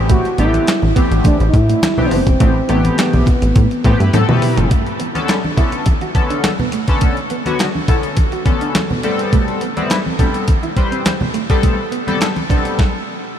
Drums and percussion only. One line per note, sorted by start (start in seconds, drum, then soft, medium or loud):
0.09 kick loud
0.09 closed hi-hat medium
0.09 low conga medium
0.25 closed hi-hat soft
0.38 closed hi-hat medium
0.38 muted conga soft
0.54 closed hi-hat medium
0.54 high conga medium
0.67 snare loud
0.67 clap medium
0.67 closed hi-hat medium
0.67 muted conga soft
0.82 high conga medium
0.96 kick medium
0.96 closed hi-hat medium
1.12 closed hi-hat medium
1.24 kick loud
1.24 closed hi-hat medium
1.24 muted conga soft
1.24 high conga medium
1.40 closed hi-hat soft
1.54 kick medium
1.54 closed hi-hat medium
1.54 muted conga soft
1.69 closed hi-hat soft
1.82 snare loud
1.82 clap medium
1.82 closed hi-hat loud
1.82 muted conga soft
1.82 high conga medium
1.98 high conga medium
1.98 low conga medium
2.11 open hi-hat medium
2.11 muted conga soft
2.27 kick medium
2.27 closed hi-hat medium
2.40 kick loud
2.40 closed hi-hat loud
2.40 muted conga soft
2.40 low conga medium
2.69 closed hi-hat medium
2.84 closed hi-hat medium
2.84 high conga medium
2.98 snare loud
2.98 clap loud
2.98 closed hi-hat medium
3.13 closed hi-hat soft
3.13 high conga medium
3.26 kick loud
3.26 closed hi-hat medium
3.26 muted conga soft
3.26 low conga medium
3.42 closed hi-hat medium
3.56 kick loud
3.56 closed hi-hat medium
3.56 high conga medium
3.71 closed hi-hat soft
3.84 kick loud
3.84 closed hi-hat medium
3.84 muted conga soft
3.84 high conga medium
4.00 closed hi-hat soft
4.13 closed hi-hat loud
4.13 high tom medium
4.13 muted conga soft
4.13 high conga medium
4.29 mid tom medium
4.29 high conga medium
4.29 low conga medium
4.42 mid tom medium
4.42 open hi-hat medium
4.57 closed hi-hat medium
4.57 floor tom medium
4.71 kick loud
4.71 closed hi-hat medium
4.71 low conga medium
4.86 closed hi-hat soft
5.00 closed hi-hat medium
5.00 muted conga soft
5.15 closed hi-hat medium
5.15 high conga medium
5.28 snare loud
5.28 clap medium
5.28 closed hi-hat medium
5.28 muted conga soft
5.44 high conga medium
5.57 kick medium
5.57 closed hi-hat medium
5.57 muted conga soft
5.57 low conga medium
5.72 closed hi-hat medium
5.86 kick loud
5.86 closed hi-hat medium
5.86 muted conga soft
5.86 high conga medium
6.01 closed hi-hat soft
6.15 kick medium
6.15 closed hi-hat medium
6.15 high conga soft
6.30 closed hi-hat soft
6.44 snare loud
6.44 clap medium
6.44 closed hi-hat medium
6.44 high conga medium
6.59 high conga medium
6.59 low conga medium
6.72 closed hi-hat medium
6.88 kick medium
6.88 closed hi-hat medium
7.01 kick medium
7.01 closed hi-hat medium
7.01 muted conga soft
7.01 low conga medium
7.17 closed hi-hat soft
7.30 closed hi-hat medium
7.30 muted conga soft
7.46 closed hi-hat medium
7.46 high conga medium
7.59 snare loud
7.59 clap medium
7.59 closed hi-hat medium
7.59 muted conga soft
7.75 high conga medium
7.88 kick medium
7.88 closed hi-hat medium
7.88 muted conga soft
7.88 low conga medium
8.03 closed hi-hat soft
8.17 kick loud
8.17 closed hi-hat medium
8.17 muted conga soft
8.17 high conga medium
8.32 closed hi-hat soft
8.46 kick medium
8.46 closed hi-hat medium
8.46 muted conga soft
8.46 high conga soft
8.61 closed hi-hat soft
8.75 snare loud
8.75 clap medium
8.75 closed hi-hat medium
8.75 high conga medium
8.91 high conga medium
8.91 low conga medium
9.03 closed hi-hat medium
9.03 muted conga soft
9.19 closed hi-hat medium
9.33 kick medium
9.33 closed hi-hat medium
9.33 muted conga soft
9.33 low conga medium
9.48 closed hi-hat soft
9.61 closed hi-hat medium
9.61 muted conga soft
9.77 closed hi-hat soft
9.77 high conga medium
9.90 snare loud
9.90 clap medium
9.90 closed hi-hat medium
10.06 high conga medium
10.19 kick medium
10.19 closed hi-hat medium
10.19 muted conga soft
10.19 low conga medium
10.34 closed hi-hat soft
10.48 kick loud
10.48 closed hi-hat medium
10.48 high conga medium
10.63 closed hi-hat soft
10.77 kick medium
10.77 closed hi-hat medium
10.77 high conga soft
10.92 closed hi-hat soft
11.06 snare loud
11.06 clap medium
11.06 closed hi-hat medium
11.06 muted conga soft
11.06 high conga medium
11.21 high conga medium
11.21 low conga medium
11.34 closed hi-hat medium
11.34 muted conga soft
11.50 kick medium
11.50 closed hi-hat medium
11.63 kick medium
11.63 closed hi-hat medium
11.63 low conga medium
11.92 closed hi-hat medium
12.07 closed hi-hat soft
12.07 high conga medium
12.21 snare loud
12.21 clap medium
12.21 closed hi-hat medium
12.36 closed hi-hat soft
12.36 high conga medium
12.50 kick medium
12.50 closed hi-hat medium
12.50 muted conga soft
12.50 low conga medium
12.65 closed hi-hat soft
12.79 kick loud
12.79 snare medium